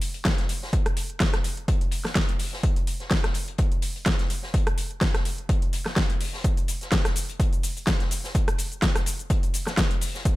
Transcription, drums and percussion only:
0.01 closed hi-hat, open hi-hat
0.14 closed hi-hat
0.25 kick, snare, closed hi-hat
0.38 snare, closed hi-hat
0.49 closed hi-hat, open hi-hat
0.63 snare
0.73 kick, closed hi-hat
0.86 cross-stick, closed hi-hat
0.96 closed hi-hat, open hi-hat
1.10 closed hi-hat
1.20 kick, snare, closed hi-hat
1.32 cross-stick, snare, closed hi-hat
1.44 closed hi-hat, open hi-hat
1.57 closed hi-hat
1.68 kick, closed hi-hat
1.81 closed hi-hat
1.91 closed hi-hat, open hi-hat
2.05 cross-stick, snare
2.15 kick, snare, closed hi-hat
2.28 closed hi-hat
2.39 open hi-hat
2.53 snare
2.63 kick, closed hi-hat
2.76 closed hi-hat
2.87 closed hi-hat, open hi-hat
3.00 snare, closed hi-hat
3.10 kick, snare, closed hi-hat
3.24 cross-stick, snare, closed hi-hat
3.34 closed hi-hat, open hi-hat
3.48 closed hi-hat
3.58 kick, closed hi-hat
3.72 closed hi-hat
3.82 closed hi-hat, open hi-hat
3.96 closed hi-hat
4.05 kick, snare, closed hi-hat
4.19 snare, closed hi-hat
4.30 closed hi-hat, open hi-hat
4.43 snare
4.54 kick, closed hi-hat
4.67 cross-stick, closed hi-hat
4.78 closed hi-hat, open hi-hat
4.91 closed hi-hat
5.01 kick, snare, closed hi-hat
5.14 cross-stick, snare, closed hi-hat
5.25 closed hi-hat, open hi-hat
5.38 closed hi-hat
5.49 kick, closed hi-hat
5.62 closed hi-hat
5.73 closed hi-hat, open hi-hat
5.86 cross-stick, snare
5.96 kick, snare, closed hi-hat
6.10 closed hi-hat
6.20 open hi-hat
6.33 snare
6.44 kick, closed hi-hat, shaker
6.57 closed hi-hat, shaker
6.68 closed hi-hat, open hi-hat, shaker
6.81 snare, closed hi-hat, shaker
6.92 kick, snare, closed hi-hat, shaker
7.05 cross-stick, snare, closed hi-hat, shaker
7.15 closed hi-hat, open hi-hat, shaker
7.29 closed hi-hat, shaker
7.40 kick, closed hi-hat, shaker
7.53 closed hi-hat, shaker
7.63 closed hi-hat, open hi-hat, shaker
7.77 closed hi-hat, shaker
7.87 kick, snare, closed hi-hat, shaker
8.00 snare, closed hi-hat
8.11 closed hi-hat, open hi-hat, shaker
8.24 snare, shaker
8.35 kick, closed hi-hat, shaker
8.48 cross-stick, closed hi-hat, shaker
8.58 closed hi-hat, open hi-hat, shaker
8.72 closed hi-hat, shaker
8.82 kick, snare, closed hi-hat, shaker
8.95 cross-stick, snare, closed hi-hat, shaker
9.06 closed hi-hat, open hi-hat, shaker
9.19 closed hi-hat, shaker
9.30 kick, closed hi-hat, shaker
9.43 closed hi-hat, shaker
9.53 closed hi-hat, open hi-hat, shaker
9.67 cross-stick, snare, shaker
9.77 kick, snare, closed hi-hat, shaker
9.91 closed hi-hat
10.01 open hi-hat, shaker
10.15 snare, shaker
10.25 kick, closed hi-hat, shaker

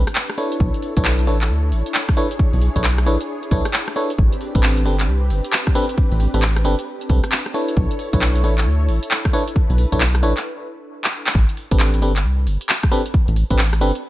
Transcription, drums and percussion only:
0.07 cross-stick, closed hi-hat
0.15 clap
0.30 cross-stick
0.38 open hi-hat
0.52 closed hi-hat
0.60 kick
0.74 closed hi-hat
0.83 open hi-hat
0.97 kick, closed hi-hat
1.05 clap
1.19 closed hi-hat
1.27 open hi-hat
1.41 clap, closed hi-hat
1.72 open hi-hat
1.86 closed hi-hat
1.95 clap
2.09 kick, cross-stick
2.17 open hi-hat
2.31 closed hi-hat
2.39 kick
2.53 open hi-hat
2.62 open hi-hat
2.76 kick, closed hi-hat
2.84 clap
2.98 cross-stick, closed hi-hat
3.06 open hi-hat
3.21 closed hi-hat
3.43 closed hi-hat
3.51 kick, open hi-hat
3.65 cross-stick, closed hi-hat
3.74 clap
3.88 cross-stick
3.96 open hi-hat
4.10 closed hi-hat
4.19 kick
4.33 closed hi-hat
4.41 open hi-hat
4.55 kick, closed hi-hat
4.63 clap
4.77 closed hi-hat
4.86 open hi-hat
5.00 clap, closed hi-hat
5.30 open hi-hat
5.45 closed hi-hat
5.53 clap
5.67 kick, cross-stick
5.75 open hi-hat
5.89 closed hi-hat
5.98 kick
6.12 open hi-hat
6.20 open hi-hat
6.34 closed hi-hat
6.42 clap
6.56 cross-stick, closed hi-hat
6.65 open hi-hat
6.79 closed hi-hat
7.01 closed hi-hat
7.09 kick, open hi-hat
7.24 cross-stick, closed hi-hat
7.32 clap
7.46 cross-stick
7.54 open hi-hat
7.69 closed hi-hat
7.77 kick
7.91 closed hi-hat
7.99 open hi-hat
8.13 kick, closed hi-hat
8.22 clap
8.36 closed hi-hat
8.44 open hi-hat
8.58 clap, closed hi-hat
8.89 open hi-hat
9.03 closed hi-hat
9.11 clap
9.25 kick, cross-stick
9.34 open hi-hat
9.48 closed hi-hat
9.56 kick
9.70 open hi-hat
9.78 open hi-hat
9.92 kick, closed hi-hat
10.01 clap
10.15 cross-stick, closed hi-hat
10.23 open hi-hat
10.37 clap, closed hi-hat
11.04 clap
11.27 clap
11.35 kick
11.49 closed hi-hat
11.57 open hi-hat
11.71 kick, closed hi-hat
11.80 clap
11.94 closed hi-hat
12.02 open hi-hat
12.16 clap, closed hi-hat
12.47 open hi-hat
12.61 closed hi-hat
12.69 clap
12.83 kick, cross-stick
12.92 open hi-hat
13.06 closed hi-hat
13.14 kick
13.28 closed hi-hat
13.36 open hi-hat
13.51 kick, closed hi-hat
13.59 clap
13.73 cross-stick, closed hi-hat
13.81 open hi-hat
13.95 closed hi-hat

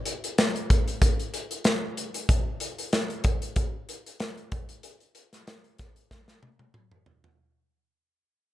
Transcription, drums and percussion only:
0.06 closed hi-hat
0.24 closed hi-hat
0.38 snare, closed hi-hat
0.56 closed hi-hat
0.70 kick, closed hi-hat
0.88 closed hi-hat
1.02 kick, closed hi-hat
1.20 closed hi-hat
1.34 closed hi-hat
1.51 closed hi-hat
1.64 snare, closed hi-hat
1.97 closed hi-hat
2.14 closed hi-hat
2.29 kick, closed hi-hat
2.60 closed hi-hat
2.79 closed hi-hat
2.93 snare, closed hi-hat
3.10 closed hi-hat
3.24 kick, closed hi-hat
3.42 closed hi-hat
3.56 kick, closed hi-hat
3.89 closed hi-hat
4.06 closed hi-hat
4.20 snare, closed hi-hat
4.37 closed hi-hat
4.52 kick, closed hi-hat
4.69 closed hi-hat
4.83 closed hi-hat
5.00 closed hi-hat
5.15 closed hi-hat
5.33 snare, closed hi-hat
5.47 snare, closed hi-hat
5.64 closed hi-hat
5.78 kick, snare, closed hi-hat
5.96 closed hi-hat
6.11 kick, snare
6.28 snare
6.43 high tom
6.59 high tom
6.74 mid tom
6.92 mid tom
7.06 floor tom
7.24 floor tom

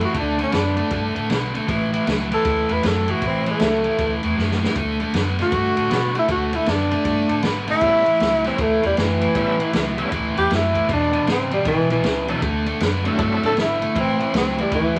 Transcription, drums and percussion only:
0.01 ride
0.14 kick, ride
0.39 ride
0.52 snare, ride
0.77 ride
0.90 kick, ride
1.16 ride
1.30 snare, ride
1.55 ride
1.68 kick, ride
1.93 ride
2.07 snare, ride
2.32 ride
2.45 kick, ride
2.69 ride
2.83 snare, ride
3.08 ride
3.21 kick, ride
3.46 ride
3.59 snare, ride
3.84 ride
3.98 kick, ride
4.23 ride
4.38 snare
4.51 snare
4.64 snare
4.76 kick, ride
5.00 ride
5.13 snare, ride
5.39 snare, ride
5.52 kick, ride
5.77 ride
5.91 snare, ride
6.15 ride
6.29 kick, ride
6.53 ride
6.66 snare, ride
6.91 ride
7.05 kick, ride
7.29 ride
7.42 snare, ride
7.68 ride
7.81 kick, ride
8.06 ride
8.20 snare, ride
8.44 snare, ride
8.58 kick, ride
8.83 ride
8.97 snare, ride
9.21 ride
9.35 kick, ride
9.60 ride
9.73 snare, ride
9.98 ride
10.12 kick, ride
10.37 ride
10.50 snare, ride
10.75 kick, ride
10.89 kick, ride
11.13 ride
11.27 snare, ride
11.51 ride
11.65 kick, ride
11.90 ride
12.03 snare, ride
12.28 ride
12.42 kick, ride
12.66 ride
12.80 snare, ride
13.05 ride
13.19 kick, ride
13.43 ride
13.57 snare, ride
13.82 ride
13.96 kick, ride
14.20 ride
14.34 snare, ride
14.58 ride
14.72 kick, ride
14.96 ride

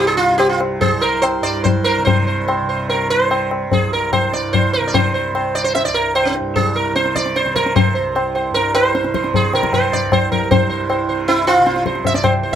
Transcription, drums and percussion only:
0.40 tabla na
0.61 tabla na
0.81 tabla tin, tabla ge
1.23 tabla na
1.65 tabla tin, tabla ge
2.07 tabla tin, tabla ge
2.48 tabla na
2.89 tabla tin
3.31 tabla na
3.51 tabla na
3.72 tabla tin, tabla ge
4.13 tabla na, tabla ge
4.33 tabla te
4.54 tabla tin, tabla ge
4.94 tabla tin, tabla ge
5.35 tabla na
5.75 tabla tin
6.16 tabla na
6.36 tabla na
6.56 tabla tin, tabla ge
6.96 tabla te
7.06 tabla te
7.16 tabla ke
7.26 tabla te
7.36 tabla te
7.46 tabla te
7.56 tabla ke
7.66 tabla te
7.76 tabla tin, tabla ge
8.16 tabla na
8.36 tabla na
8.56 tabla tin
8.75 tabla na
8.95 tabla te
9.04 tabla te
9.14 tabla ke
9.24 tabla te
9.34 tabla tin, tabla ge
9.54 tabla na
9.63 tabla ke
9.73 tabla na, tabla ge
9.93 tabla ge
10.12 tabla na, tabla ge
10.32 tabla ge
10.51 tabla tin, tabla ge
10.90 tabla na
11.28 tabla tin
11.47 tabla na
11.67 tabla te
11.76 tabla te
11.86 tabla ke
11.95 tabla te
12.05 tabla tin, tabla ge
12.14 tabla te
12.24 tabla na, tabla ge

